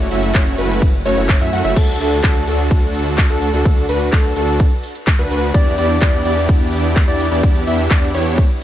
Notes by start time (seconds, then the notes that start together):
0.11 F#1 A3 C#4 E4 F#4 E5, open hi-hat
0.23 closed hi-hat
0.35 F#1 A3 C#4 E4 F#4 C#5, kick, clap, closed hi-hat, ride
0.47 closed hi-hat
0.58 F#1 A3 C#4 E4 F#4 B4, open hi-hat
0.70 closed hi-hat
0.82 kick, closed hi-hat, ride
1.05 F#1 A3 C#4 E4 F#4 C#5, open hi-hat
1.17 F#1 A3 C#4 E4 F#4 C#5, closed hi-hat
1.29 kick, clap, closed hi-hat, ride
1.41 F#2 A3 C#4 E4 F#4 E5, closed hi-hat
1.53 F#2 A3 C#4 E4 F#4 F#5, open hi-hat
1.65 F#1 A3 C#4 E4 F#4 E5, closed hi-hat
1.76 D2 D4 F#4 A4, kick, closed hi-hat, crash, ride
2.00 D2 D4 F#4 A4, open hi-hat
2.12 closed hi-hat
2.24 D2 D4 F#4 A4, kick, clap, closed hi-hat, ride
2.47 D2 D4 F#4 A4, open hi-hat
2.59 closed hi-hat
2.71 kick, closed hi-hat, ride
2.95 open hi-hat
3.06 closed hi-hat
3.18 kick, clap, closed hi-hat, ride
3.30 D2 D4 F#4 A4, closed hi-hat
3.42 open hi-hat
3.54 D2 D4 F#4 A4, closed hi-hat
3.65 kick, closed hi-hat, ride
3.89 D2 D4 F#4 B4, open hi-hat
4.01 closed hi-hat
4.13 D2 D4 F#4 A4, kick, clap, closed hi-hat, ride
4.36 D2 D4 F#4 A4, open hi-hat
4.48 closed hi-hat
4.60 kick, closed hi-hat, ride
4.83 open hi-hat
4.95 closed hi-hat
5.07 kick, clap, closed hi-hat, ride
5.19 D2 D4 F#4 B4, closed hi-hat
5.31 D2 D4 F#4 B4, open hi-hat
5.43 closed hi-hat
5.54 E2 B3 D4 E4 G4 D5, kick, closed hi-hat, ride
5.78 E2 B3 D4 E4 G4 D5, open hi-hat
5.90 closed hi-hat
6.02 E2 B3 D4 E4 G4 D5, kick, clap, closed hi-hat, ride
6.25 E2 B3 D4 E4 G4 D5, open hi-hat
6.37 closed hi-hat
6.49 kick, closed hi-hat, ride
6.73 open hi-hat
6.84 closed hi-hat
6.96 kick, clap, closed hi-hat, ride
7.08 E2 B3 D4 E4 G4 D5, closed hi-hat
7.20 open hi-hat
7.32 E2 B3 D4 E4 G4 D5, closed hi-hat
7.43 kick, closed hi-hat, ride
7.55 closed hi-hat
7.67 E2 B3 D4 E4 G4 E5, open hi-hat
7.79 closed hi-hat
7.91 E2 B3 D4 E4 G4 D5, kick, clap, closed hi-hat, ride
8.14 E2 B3 D4 E4 G4 C#5, open hi-hat
8.26 closed hi-hat
8.38 kick, closed hi-hat, ride